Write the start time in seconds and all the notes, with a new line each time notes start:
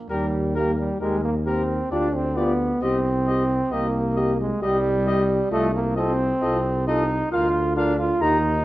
0.10 D#2 G3 G4 A#4
0.55 A#3 G4 A#4
0.78 G3
1.01 D#2 G#3 G4 A#4
1.24 A#3
1.46 C4 G4 A#4
1.91 D2 D4 F4 G4 D5
2.15 C4
2.36 B3 F4 G4 D5
2.82 C2 C4 G4 D#5
3.27 G4 D#5
3.71 C2 A#3 G4 D#5
4.16 G4 D#5
4.41 G#3
4.62 C2 G3 G4 D#5
5.07 G4 D#5
5.52 C2 A3 F4 A4 D#5
5.75 A#3
5.96 C4 F4 A4 D#5
6.42 C2 F4 A4 D#5
6.87 D#4 F4 A4 D#5
7.32 D2 F4 A#4 F5
7.76 D4 F4 A#4 F5
7.99 F4
8.21 D#2 D#4 G4 A#4 A#5